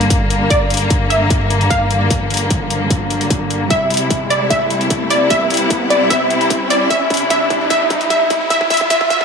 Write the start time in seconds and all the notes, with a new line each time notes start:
Already playing: G2 D3 A#3, riser
0.01 closed hi-hat
0.10 kick, closed hi-hat
0.30 closed hi-hat
0.50 D5, kick, closed hi-hat
0.70 closed hi-hat
0.74 closed hi-hat
0.77 closed hi-hat
0.90 kick, closed hi-hat
1.10 E5, closed hi-hat
1.30 kick, closed hi-hat
1.50 closed hi-hat
1.61 closed hi-hat
1.70 F5, kick, closed hi-hat
1.91 closed hi-hat
2.10 kick, closed hi-hat
2.30 closed hi-hat
2.34 closed hi-hat
2.37 closed hi-hat
2.50 kick, closed hi-hat
2.70 closed hi-hat
2.90 kick, closed hi-hat
3.10 closed hi-hat
3.21 closed hi-hat
3.30 kick, closed hi-hat
3.50 closed hi-hat
3.70 C3 G3 E4 E5, kick, closed hi-hat
3.90 closed hi-hat
3.94 closed hi-hat
3.97 closed hi-hat
4.10 kick, closed hi-hat
4.30 D5, closed hi-hat
4.50 E5, kick, closed hi-hat
4.70 closed hi-hat
4.81 closed hi-hat
4.90 kick, closed hi-hat
5.10 D5, open hi-hat
5.30 E5, kick, closed hi-hat
5.50 closed hi-hat
5.54 closed hi-hat
5.57 closed hi-hat
5.70 kick, closed hi-hat
5.90 D5, closed hi-hat
6.10 E5, kick, closed hi-hat
6.30 closed hi-hat
6.41 closed hi-hat
6.50 kick, closed hi-hat
6.70 D5, open hi-hat
6.90 E5, kick, closed hi-hat
7.10 kick, closed hi-hat
7.14 closed hi-hat
7.17 closed hi-hat
7.30 E5, kick, closed hi-hat
7.50 kick, closed hi-hat
7.70 E5, kick, closed hi-hat
7.90 kick, closed hi-hat
8.01 closed hi-hat
8.10 E5, kick, closed hi-hat
8.30 kick, open hi-hat
8.50 E5, kick, closed hi-hat
8.61 kick
8.70 E5, kick, closed hi-hat
8.74 closed hi-hat
8.77 kick, closed hi-hat
8.90 E5, kick, closed hi-hat
9.01 kick
9.10 E5, kick, closed hi-hat
9.21 kick